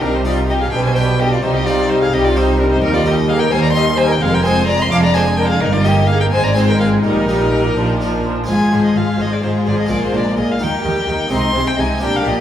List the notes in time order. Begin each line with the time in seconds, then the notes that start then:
0.00 C2 C3 G3 D4 D#4 A#4
0.13 D#4 C5
0.24 G3 D#4 F4 G4 D5
0.47 G3 D#4 G4 D#5
0.60 G#4 F5
0.71 B1 B2 G3 D4 B4 G5
0.85 C5 G#5
0.95 G3 D4 G4 B4 G5
1.18 G3 D4 G4 D#5
1.32 F4 D5
1.42 C2 C3 G3 D#4 C5
1.55 G4 D#5
1.65 G3 C4 D#4 F4 D5
1.88 G3 D#4 C5
2.01 G#4 F5
2.12 C2 C3 G3 D#4 G4 D#5
2.25 F4 D5
2.36 G3 C4 D#4 C5
2.57 G3 D4 D#4 A#4
2.70 D#4 C5
2.81 D#2 G3 D#4 A#4
2.94 F4 D5
3.04 G3 A#3 D#4 G4 D#5
3.27 G3 D#4 G#4 F5
3.39 A#4 G5
3.50 D#2 G3 D#4 C5 G#5
3.63 D5 A#5
3.73 G3 C4 D#4 D#5 C6
3.77 D#4
3.98 G3 D#4 C5 G#5
4.08 A#4 G5
4.20 F1 F2 G#3 C4 G#4 F5
4.32 A#4 G5
4.43 G#3 C4 G#4 C5 G#5
4.67 G#3 C4 D5 A#5
4.80 D#5 C6
4.90 F1 F2 G#3 D4 F5 D6
5.04 D5 A#5
5.13 G#3 D4 G#4 C5 G#5
5.37 G#3 D4 A#4 G5
5.48 G#4 F5
5.60 G1 G2 A#3 D#4 A#4
5.72 F4 D5
5.83 A#3 D#4 G4 D#5
6.07 A#3 D#4 G#4 F5
6.20 A#4 G5
6.31 G#1 G#2 G#3 C4 C5 G#5
6.44 D5 A#5
6.54 G#3 C4 F4 C5 G#5
6.68 A#4 G5
6.80 G#3 C4 G#4 F5
7.03 A#1 A#2 G3 D#4 A#4
7.28 G3 A#3 D#4
7.53 G3 D#4
7.76 A#1 A#2 F3 D4
7.99 F3 A#3 D4
8.25 F3 D4
8.44 G#3 C4 F4 G#5
8.48 G#1 G#2 G#3 F4 G#4
8.71 G#1 G#2 F3 G#4 C5
8.85 D#5
8.96 G#1 G#2 G#3 F4 G#4 F5
9.19 G#1 G#2 F3 G#4 C5 D#5
9.33 D5
9.43 G#1 G#2 G#3 F4 G#4 C5
9.66 G#1 G#2 F3 G#4 C5 D5
9.80 D#5
9.86 G#3 A#3 F4
9.90 A#1 A#2 A#3 F4 G#4 D5
10.05 C5
10.13 A#1 A#2 G#3 D4 A#4 D5
10.37 A#1 A#2 A#3 F4 G#4 D#5
10.51 F5
10.58 D#2 D#3 A#3 D#4 G4
10.63 G5
10.84 D#2 D#3 G3 G4 A#4
11.06 D#2 D#3 A#3 D#4 G4
11.28 C2 C3 G#3 C4 D#4 D#5
11.32 C3 C6
11.53 C2 C3 G#3 C4 C5
11.68 G5
11.78 C2 C3 C4 D#4 D#5 G#5
11.98 A#3 D4 G4 A#4
12.02 A#1 A#2 G3 D4 G5
12.16 F5
12.24 A#1 A#2 A#3 G4 D5 D#5